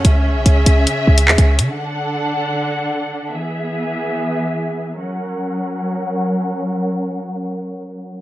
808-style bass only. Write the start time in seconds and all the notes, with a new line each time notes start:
0.05 C#2
0.35 B1
0.46 C#2
0.66 C#2
1.07 C#2
1.28 E2
1.38 C#2
1.59 C#3